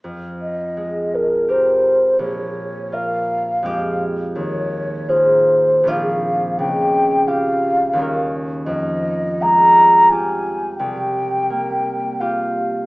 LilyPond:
<<
  \new Staff \with { instrumentName = "Flute" } { \time 3/4 \key f \minor \tempo 4 = 84 r8 ees''4 bes'8 c''4 | des''4 f''4. r8 | des''4 c''4 f''4 | g''4 f''4. r8 |
ees''4 bes''4 aes''4 | g''2 f''4 | }
  \new Staff \with { instrumentName = "Harp" } { \time 3/4 \key f \minor f,4 aes4 <g' bes'>4 | bes,,4 <f' bes'>4 <f, aes c' f' g'>4 | ees,4 <f' aes'>4 <bes,, c' d' f' aes'>4 | des,4 <f' g'>4 <ees, g des' f' bes'>4 |
f,4 aes4 <f' g'>4 | c,4 bes4 <f' g'>4 | }
>>